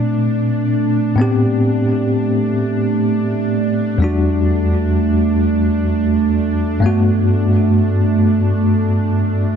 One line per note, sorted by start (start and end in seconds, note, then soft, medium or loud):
0.00 1.14 A#2 medium
0.00 1.15 A3 medium
0.00 1.17 A3 medium
0.00 1.16 C4 medium
0.00 1.17 D4 medium
0.00 9.56 D4 medium
1.16 3.96 A2 medium
1.16 9.56 A3 medium
1.16 3.97 B3 medium
1.16 3.98 C4 medium
1.21 3.99 G4 medium
3.98 6.78 E2 medium
3.98 6.79 G3 medium
4.02 6.80 D4 medium
4.02 6.81 F#4 medium
6.80 9.56 G2 medium
6.80 9.56 A3 medium
6.80 9.56 B3 medium
6.86 9.56 F#4 medium